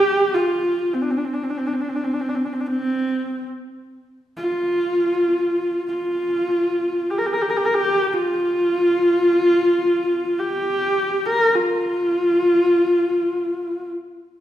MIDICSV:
0, 0, Header, 1, 2, 480
1, 0, Start_track
1, 0, Tempo, 500000
1, 13828, End_track
2, 0, Start_track
2, 0, Title_t, "Horsehead fiddle"
2, 0, Program_c, 0, 110
2, 0, Note_on_c, 0, 67, 102
2, 326, Note_on_c, 0, 65, 74
2, 340, Note_off_c, 0, 67, 0
2, 894, Note_on_c, 0, 60, 49
2, 908, Note_off_c, 0, 65, 0
2, 979, Note_on_c, 0, 62, 55
2, 994, Note_off_c, 0, 60, 0
2, 1059, Note_on_c, 0, 60, 52
2, 1073, Note_off_c, 0, 62, 0
2, 1125, Note_on_c, 0, 62, 57
2, 1140, Note_off_c, 0, 60, 0
2, 1198, Note_on_c, 0, 60, 55
2, 1212, Note_off_c, 0, 62, 0
2, 1280, Note_on_c, 0, 62, 52
2, 1294, Note_off_c, 0, 60, 0
2, 1375, Note_on_c, 0, 60, 51
2, 1390, Note_off_c, 0, 62, 0
2, 1438, Note_on_c, 0, 62, 55
2, 1453, Note_off_c, 0, 60, 0
2, 1510, Note_on_c, 0, 60, 57
2, 1525, Note_off_c, 0, 62, 0
2, 1599, Note_on_c, 0, 62, 56
2, 1614, Note_off_c, 0, 60, 0
2, 1665, Note_on_c, 0, 60, 44
2, 1679, Note_off_c, 0, 62, 0
2, 1736, Note_on_c, 0, 62, 50
2, 1751, Note_off_c, 0, 60, 0
2, 1810, Note_on_c, 0, 60, 52
2, 1824, Note_off_c, 0, 62, 0
2, 1876, Note_on_c, 0, 62, 55
2, 1891, Note_off_c, 0, 60, 0
2, 1955, Note_on_c, 0, 60, 52
2, 1969, Note_off_c, 0, 62, 0
2, 2047, Note_on_c, 0, 62, 52
2, 2062, Note_off_c, 0, 60, 0
2, 2119, Note_on_c, 0, 60, 57
2, 2133, Note_off_c, 0, 62, 0
2, 2191, Note_on_c, 0, 62, 58
2, 2206, Note_off_c, 0, 60, 0
2, 2256, Note_on_c, 0, 60, 47
2, 2270, Note_off_c, 0, 62, 0
2, 2351, Note_on_c, 0, 62, 52
2, 2366, Note_off_c, 0, 60, 0
2, 2424, Note_on_c, 0, 60, 50
2, 2438, Note_off_c, 0, 62, 0
2, 2499, Note_on_c, 0, 62, 60
2, 2513, Note_off_c, 0, 60, 0
2, 2568, Note_on_c, 0, 60, 65
2, 2582, Note_off_c, 0, 62, 0
2, 3303, Note_off_c, 0, 60, 0
2, 4195, Note_on_c, 0, 65, 79
2, 5600, Note_off_c, 0, 65, 0
2, 5648, Note_on_c, 0, 65, 73
2, 6816, Note_on_c, 0, 67, 60
2, 6830, Note_off_c, 0, 65, 0
2, 6893, Note_on_c, 0, 70, 59
2, 6907, Note_off_c, 0, 67, 0
2, 6966, Note_on_c, 0, 67, 55
2, 6981, Note_off_c, 0, 70, 0
2, 7039, Note_on_c, 0, 70, 66
2, 7053, Note_off_c, 0, 67, 0
2, 7120, Note_on_c, 0, 67, 65
2, 7134, Note_off_c, 0, 70, 0
2, 7196, Note_on_c, 0, 70, 64
2, 7210, Note_off_c, 0, 67, 0
2, 7267, Note_on_c, 0, 67, 75
2, 7282, Note_off_c, 0, 70, 0
2, 7348, Note_on_c, 0, 70, 65
2, 7362, Note_off_c, 0, 67, 0
2, 7430, Note_on_c, 0, 67, 89
2, 7445, Note_off_c, 0, 70, 0
2, 7812, Note_on_c, 0, 65, 83
2, 7827, Note_off_c, 0, 67, 0
2, 9973, Note_on_c, 0, 67, 85
2, 9988, Note_off_c, 0, 65, 0
2, 10807, Note_on_c, 0, 70, 91
2, 10821, Note_off_c, 0, 67, 0
2, 11083, Note_on_c, 0, 65, 83
2, 11098, Note_off_c, 0, 70, 0
2, 13323, Note_off_c, 0, 65, 0
2, 13828, End_track
0, 0, End_of_file